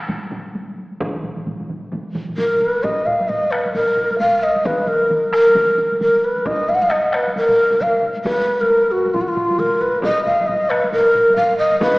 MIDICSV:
0, 0, Header, 1, 3, 480
1, 0, Start_track
1, 0, Tempo, 455581
1, 1061, Time_signature, 4, 2, 24, 8
1, 6331, Tempo, 446097
1, 12763, End_track
2, 0, Start_track
2, 0, Title_t, "Shakuhachi"
2, 0, Program_c, 0, 77
2, 2500, Note_on_c, 0, 70, 78
2, 2750, Note_on_c, 0, 71, 77
2, 2766, Note_off_c, 0, 70, 0
2, 2984, Note_on_c, 0, 75, 74
2, 3000, Note_off_c, 0, 71, 0
2, 3222, Note_on_c, 0, 77, 73
2, 3238, Note_off_c, 0, 75, 0
2, 3461, Note_on_c, 0, 75, 75
2, 3476, Note_off_c, 0, 77, 0
2, 3700, Note_on_c, 0, 71, 67
2, 3716, Note_off_c, 0, 75, 0
2, 3936, Note_off_c, 0, 71, 0
2, 3942, Note_on_c, 0, 70, 73
2, 4390, Note_off_c, 0, 70, 0
2, 4418, Note_on_c, 0, 77, 79
2, 4668, Note_on_c, 0, 75, 74
2, 4684, Note_off_c, 0, 77, 0
2, 4907, Note_on_c, 0, 71, 73
2, 4923, Note_off_c, 0, 75, 0
2, 5138, Note_on_c, 0, 70, 71
2, 5154, Note_off_c, 0, 71, 0
2, 5606, Note_off_c, 0, 70, 0
2, 5612, Note_on_c, 0, 70, 75
2, 6287, Note_off_c, 0, 70, 0
2, 6335, Note_on_c, 0, 70, 68
2, 6582, Note_on_c, 0, 71, 66
2, 6598, Note_off_c, 0, 70, 0
2, 6819, Note_on_c, 0, 75, 75
2, 6835, Note_off_c, 0, 71, 0
2, 7063, Note_on_c, 0, 77, 73
2, 7079, Note_off_c, 0, 75, 0
2, 7123, Note_on_c, 0, 78, 61
2, 7140, Note_off_c, 0, 77, 0
2, 7203, Note_on_c, 0, 77, 79
2, 7220, Note_off_c, 0, 78, 0
2, 7294, Note_on_c, 0, 75, 73
2, 7310, Note_off_c, 0, 77, 0
2, 7554, Note_on_c, 0, 71, 70
2, 7570, Note_off_c, 0, 75, 0
2, 7785, Note_off_c, 0, 71, 0
2, 7791, Note_on_c, 0, 70, 72
2, 8276, Note_on_c, 0, 77, 72
2, 8292, Note_off_c, 0, 70, 0
2, 8513, Note_off_c, 0, 77, 0
2, 8739, Note_on_c, 0, 71, 77
2, 9126, Note_on_c, 0, 70, 69
2, 9142, Note_off_c, 0, 71, 0
2, 9456, Note_on_c, 0, 66, 70
2, 9472, Note_off_c, 0, 70, 0
2, 9700, Note_on_c, 0, 65, 76
2, 9716, Note_off_c, 0, 66, 0
2, 9777, Note_on_c, 0, 66, 61
2, 9793, Note_off_c, 0, 65, 0
2, 9856, Note_on_c, 0, 65, 70
2, 9872, Note_off_c, 0, 66, 0
2, 10186, Note_on_c, 0, 70, 74
2, 10202, Note_off_c, 0, 65, 0
2, 10423, Note_on_c, 0, 71, 76
2, 10439, Note_off_c, 0, 70, 0
2, 10655, Note_off_c, 0, 71, 0
2, 10661, Note_on_c, 0, 75, 86
2, 10886, Note_off_c, 0, 75, 0
2, 10899, Note_on_c, 0, 77, 80
2, 11128, Note_on_c, 0, 75, 85
2, 11144, Note_off_c, 0, 77, 0
2, 11376, Note_on_c, 0, 71, 78
2, 11392, Note_off_c, 0, 75, 0
2, 11612, Note_off_c, 0, 71, 0
2, 11619, Note_on_c, 0, 70, 87
2, 12063, Note_off_c, 0, 70, 0
2, 12093, Note_on_c, 0, 77, 84
2, 12316, Note_off_c, 0, 77, 0
2, 12327, Note_on_c, 0, 75, 79
2, 12552, Note_off_c, 0, 75, 0
2, 12573, Note_on_c, 0, 71, 85
2, 12763, Note_off_c, 0, 71, 0
2, 12763, End_track
3, 0, Start_track
3, 0, Title_t, "Taiko and cinematic ensemble drums"
3, 86, Note_on_c, 9, 45, 86
3, 91, Note_on_c, 9, 47, 94
3, 97, Note_on_c, 9, 48, 66
3, 192, Note_off_c, 9, 45, 0
3, 196, Note_off_c, 9, 47, 0
3, 203, Note_off_c, 9, 48, 0
3, 244, Note_on_c, 9, 48, 19
3, 327, Note_on_c, 9, 45, 94
3, 336, Note_on_c, 9, 47, 95
3, 343, Note_off_c, 9, 48, 0
3, 343, Note_on_c, 9, 48, 50
3, 432, Note_off_c, 9, 45, 0
3, 441, Note_off_c, 9, 47, 0
3, 448, Note_off_c, 9, 48, 0
3, 484, Note_on_c, 9, 48, 19
3, 584, Note_off_c, 9, 48, 0
3, 584, Note_on_c, 9, 48, 59
3, 689, Note_off_c, 9, 48, 0
3, 723, Note_on_c, 9, 48, 18
3, 823, Note_off_c, 9, 48, 0
3, 823, Note_on_c, 9, 48, 47
3, 928, Note_off_c, 9, 48, 0
3, 967, Note_on_c, 9, 48, 19
3, 1058, Note_on_c, 9, 45, 67
3, 1061, Note_off_c, 9, 48, 0
3, 1061, Note_on_c, 9, 47, 65
3, 1061, Note_on_c, 9, 48, 59
3, 1064, Note_on_c, 9, 41, 102
3, 1164, Note_off_c, 9, 45, 0
3, 1166, Note_off_c, 9, 47, 0
3, 1167, Note_off_c, 9, 48, 0
3, 1169, Note_off_c, 9, 41, 0
3, 1206, Note_on_c, 9, 47, 67
3, 1207, Note_on_c, 9, 45, 60
3, 1207, Note_on_c, 9, 48, 45
3, 1298, Note_off_c, 9, 47, 0
3, 1298, Note_on_c, 9, 47, 63
3, 1300, Note_off_c, 9, 48, 0
3, 1300, Note_on_c, 9, 48, 47
3, 1305, Note_off_c, 9, 45, 0
3, 1305, Note_on_c, 9, 45, 64
3, 1404, Note_off_c, 9, 47, 0
3, 1405, Note_off_c, 9, 48, 0
3, 1411, Note_off_c, 9, 45, 0
3, 1444, Note_on_c, 9, 47, 64
3, 1449, Note_on_c, 9, 48, 20
3, 1450, Note_on_c, 9, 45, 67
3, 1540, Note_off_c, 9, 47, 0
3, 1540, Note_on_c, 9, 47, 67
3, 1545, Note_off_c, 9, 48, 0
3, 1545, Note_on_c, 9, 48, 62
3, 1547, Note_off_c, 9, 45, 0
3, 1547, Note_on_c, 9, 45, 60
3, 1645, Note_off_c, 9, 47, 0
3, 1650, Note_off_c, 9, 48, 0
3, 1652, Note_off_c, 9, 45, 0
3, 1684, Note_on_c, 9, 47, 68
3, 1688, Note_on_c, 9, 45, 63
3, 1692, Note_on_c, 9, 48, 20
3, 1784, Note_off_c, 9, 45, 0
3, 1784, Note_on_c, 9, 45, 66
3, 1786, Note_off_c, 9, 48, 0
3, 1786, Note_on_c, 9, 48, 48
3, 1788, Note_off_c, 9, 47, 0
3, 1788, Note_on_c, 9, 47, 69
3, 1889, Note_off_c, 9, 45, 0
3, 1892, Note_off_c, 9, 48, 0
3, 1894, Note_off_c, 9, 47, 0
3, 1933, Note_on_c, 9, 48, 20
3, 2026, Note_on_c, 9, 45, 88
3, 2026, Note_on_c, 9, 47, 90
3, 2029, Note_off_c, 9, 48, 0
3, 2029, Note_on_c, 9, 48, 65
3, 2131, Note_off_c, 9, 45, 0
3, 2132, Note_off_c, 9, 47, 0
3, 2134, Note_off_c, 9, 48, 0
3, 2176, Note_on_c, 9, 48, 20
3, 2263, Note_on_c, 9, 47, 102
3, 2266, Note_off_c, 9, 48, 0
3, 2266, Note_on_c, 9, 48, 50
3, 2267, Note_on_c, 9, 45, 94
3, 2369, Note_off_c, 9, 47, 0
3, 2371, Note_off_c, 9, 48, 0
3, 2372, Note_off_c, 9, 45, 0
3, 2409, Note_on_c, 9, 47, 67
3, 2409, Note_on_c, 9, 48, 20
3, 2411, Note_on_c, 9, 45, 65
3, 2508, Note_off_c, 9, 47, 0
3, 2508, Note_off_c, 9, 48, 0
3, 2508, Note_on_c, 9, 47, 93
3, 2508, Note_on_c, 9, 48, 64
3, 2512, Note_off_c, 9, 45, 0
3, 2512, Note_on_c, 9, 45, 97
3, 2613, Note_off_c, 9, 47, 0
3, 2614, Note_off_c, 9, 48, 0
3, 2617, Note_off_c, 9, 45, 0
3, 2747, Note_on_c, 9, 48, 55
3, 2852, Note_off_c, 9, 48, 0
3, 2896, Note_on_c, 9, 48, 20
3, 2988, Note_on_c, 9, 45, 83
3, 2990, Note_off_c, 9, 48, 0
3, 2990, Note_on_c, 9, 41, 82
3, 2990, Note_on_c, 9, 48, 54
3, 3094, Note_off_c, 9, 45, 0
3, 3095, Note_off_c, 9, 48, 0
3, 3096, Note_off_c, 9, 41, 0
3, 3229, Note_on_c, 9, 48, 40
3, 3230, Note_on_c, 9, 45, 84
3, 3335, Note_off_c, 9, 45, 0
3, 3335, Note_off_c, 9, 48, 0
3, 3372, Note_on_c, 9, 48, 46
3, 3467, Note_on_c, 9, 45, 76
3, 3468, Note_off_c, 9, 48, 0
3, 3468, Note_on_c, 9, 48, 56
3, 3573, Note_off_c, 9, 45, 0
3, 3573, Note_off_c, 9, 48, 0
3, 3713, Note_on_c, 9, 37, 62
3, 3819, Note_off_c, 9, 37, 0
3, 3852, Note_on_c, 9, 48, 47
3, 3947, Note_off_c, 9, 48, 0
3, 3947, Note_on_c, 9, 48, 60
3, 3950, Note_on_c, 9, 45, 78
3, 4052, Note_off_c, 9, 48, 0
3, 4055, Note_off_c, 9, 45, 0
3, 4185, Note_on_c, 9, 45, 85
3, 4290, Note_off_c, 9, 45, 0
3, 4326, Note_on_c, 9, 48, 49
3, 4424, Note_off_c, 9, 48, 0
3, 4424, Note_on_c, 9, 48, 62
3, 4428, Note_on_c, 9, 45, 78
3, 4529, Note_off_c, 9, 48, 0
3, 4533, Note_off_c, 9, 45, 0
3, 4809, Note_on_c, 9, 48, 51
3, 4898, Note_on_c, 9, 47, 81
3, 4900, Note_off_c, 9, 48, 0
3, 4900, Note_on_c, 9, 48, 70
3, 4904, Note_on_c, 9, 41, 95
3, 5003, Note_off_c, 9, 47, 0
3, 5005, Note_off_c, 9, 48, 0
3, 5010, Note_off_c, 9, 41, 0
3, 5131, Note_on_c, 9, 47, 83
3, 5136, Note_on_c, 9, 48, 48
3, 5237, Note_off_c, 9, 47, 0
3, 5242, Note_off_c, 9, 48, 0
3, 5283, Note_on_c, 9, 48, 51
3, 5377, Note_on_c, 9, 47, 82
3, 5378, Note_off_c, 9, 48, 0
3, 5378, Note_on_c, 9, 48, 63
3, 5483, Note_off_c, 9, 47, 0
3, 5483, Note_off_c, 9, 48, 0
3, 5614, Note_on_c, 9, 37, 64
3, 5719, Note_off_c, 9, 37, 0
3, 5760, Note_on_c, 9, 48, 46
3, 5850, Note_off_c, 9, 48, 0
3, 5850, Note_on_c, 9, 48, 58
3, 5854, Note_on_c, 9, 41, 69
3, 5854, Note_on_c, 9, 47, 84
3, 5955, Note_off_c, 9, 48, 0
3, 5959, Note_off_c, 9, 47, 0
3, 5960, Note_off_c, 9, 41, 0
3, 6090, Note_on_c, 9, 47, 88
3, 6196, Note_off_c, 9, 47, 0
3, 6239, Note_on_c, 9, 48, 48
3, 6331, Note_off_c, 9, 48, 0
3, 6331, Note_on_c, 9, 48, 58
3, 6332, Note_on_c, 9, 47, 83
3, 6439, Note_off_c, 9, 48, 0
3, 6440, Note_off_c, 9, 47, 0
3, 6722, Note_on_c, 9, 48, 39
3, 6812, Note_on_c, 9, 41, 90
3, 6813, Note_on_c, 9, 45, 88
3, 6819, Note_off_c, 9, 48, 0
3, 6819, Note_on_c, 9, 48, 55
3, 6920, Note_off_c, 9, 41, 0
3, 6921, Note_off_c, 9, 45, 0
3, 6926, Note_off_c, 9, 48, 0
3, 7054, Note_on_c, 9, 45, 87
3, 7064, Note_on_c, 9, 48, 43
3, 7162, Note_off_c, 9, 45, 0
3, 7172, Note_off_c, 9, 48, 0
3, 7204, Note_on_c, 9, 48, 44
3, 7291, Note_on_c, 9, 37, 61
3, 7308, Note_off_c, 9, 48, 0
3, 7308, Note_on_c, 9, 48, 55
3, 7398, Note_off_c, 9, 37, 0
3, 7415, Note_off_c, 9, 48, 0
3, 7536, Note_on_c, 9, 37, 67
3, 7643, Note_off_c, 9, 37, 0
3, 7692, Note_on_c, 9, 48, 44
3, 7783, Note_off_c, 9, 48, 0
3, 7783, Note_on_c, 9, 48, 61
3, 7891, Note_off_c, 9, 48, 0
3, 7915, Note_on_c, 9, 45, 88
3, 8023, Note_off_c, 9, 45, 0
3, 8159, Note_on_c, 9, 45, 93
3, 8171, Note_on_c, 9, 48, 45
3, 8258, Note_off_c, 9, 45, 0
3, 8258, Note_on_c, 9, 45, 88
3, 8268, Note_off_c, 9, 48, 0
3, 8268, Note_on_c, 9, 48, 59
3, 8365, Note_off_c, 9, 45, 0
3, 8375, Note_off_c, 9, 48, 0
3, 8497, Note_on_c, 9, 45, 83
3, 8605, Note_off_c, 9, 45, 0
3, 8651, Note_on_c, 9, 48, 48
3, 8745, Note_off_c, 9, 48, 0
3, 8745, Note_on_c, 9, 48, 64
3, 8749, Note_on_c, 9, 41, 90
3, 8853, Note_off_c, 9, 48, 0
3, 8857, Note_off_c, 9, 41, 0
3, 8991, Note_on_c, 9, 48, 45
3, 9099, Note_off_c, 9, 48, 0
3, 9133, Note_on_c, 9, 48, 50
3, 9229, Note_off_c, 9, 48, 0
3, 9229, Note_on_c, 9, 48, 62
3, 9336, Note_off_c, 9, 48, 0
3, 9610, Note_on_c, 9, 48, 49
3, 9703, Note_on_c, 9, 45, 85
3, 9706, Note_on_c, 9, 47, 91
3, 9709, Note_off_c, 9, 48, 0
3, 9709, Note_on_c, 9, 48, 63
3, 9710, Note_on_c, 9, 41, 67
3, 9810, Note_off_c, 9, 45, 0
3, 9813, Note_off_c, 9, 47, 0
3, 9816, Note_off_c, 9, 48, 0
3, 9818, Note_off_c, 9, 41, 0
3, 9943, Note_on_c, 9, 45, 95
3, 9945, Note_on_c, 9, 47, 88
3, 10051, Note_off_c, 9, 45, 0
3, 10052, Note_off_c, 9, 47, 0
3, 10095, Note_on_c, 9, 48, 49
3, 10183, Note_on_c, 9, 45, 88
3, 10187, Note_on_c, 9, 47, 86
3, 10195, Note_off_c, 9, 48, 0
3, 10195, Note_on_c, 9, 48, 60
3, 10290, Note_off_c, 9, 45, 0
3, 10295, Note_off_c, 9, 47, 0
3, 10302, Note_off_c, 9, 48, 0
3, 10581, Note_on_c, 9, 48, 48
3, 10662, Note_on_c, 9, 45, 91
3, 10665, Note_on_c, 9, 41, 95
3, 10670, Note_off_c, 9, 48, 0
3, 10670, Note_on_c, 9, 48, 66
3, 10770, Note_off_c, 9, 45, 0
3, 10773, Note_off_c, 9, 41, 0
3, 10777, Note_off_c, 9, 48, 0
3, 10902, Note_on_c, 9, 45, 95
3, 10916, Note_on_c, 9, 48, 48
3, 11010, Note_off_c, 9, 45, 0
3, 11024, Note_off_c, 9, 48, 0
3, 11059, Note_on_c, 9, 48, 54
3, 11143, Note_on_c, 9, 45, 81
3, 11155, Note_off_c, 9, 48, 0
3, 11155, Note_on_c, 9, 48, 66
3, 11251, Note_off_c, 9, 45, 0
3, 11262, Note_off_c, 9, 48, 0
3, 11383, Note_on_c, 9, 37, 68
3, 11491, Note_off_c, 9, 37, 0
3, 11530, Note_on_c, 9, 48, 51
3, 11622, Note_off_c, 9, 48, 0
3, 11622, Note_on_c, 9, 48, 66
3, 11623, Note_on_c, 9, 45, 81
3, 11730, Note_off_c, 9, 48, 0
3, 11731, Note_off_c, 9, 45, 0
3, 11859, Note_on_c, 9, 45, 97
3, 11966, Note_off_c, 9, 45, 0
3, 12005, Note_on_c, 9, 48, 54
3, 12090, Note_on_c, 9, 45, 94
3, 12096, Note_off_c, 9, 48, 0
3, 12096, Note_on_c, 9, 48, 65
3, 12198, Note_off_c, 9, 45, 0
3, 12203, Note_off_c, 9, 48, 0
3, 12474, Note_on_c, 9, 48, 50
3, 12566, Note_on_c, 9, 47, 87
3, 12568, Note_off_c, 9, 48, 0
3, 12568, Note_on_c, 9, 48, 69
3, 12569, Note_on_c, 9, 41, 109
3, 12674, Note_off_c, 9, 47, 0
3, 12675, Note_off_c, 9, 48, 0
3, 12677, Note_off_c, 9, 41, 0
3, 12763, End_track
0, 0, End_of_file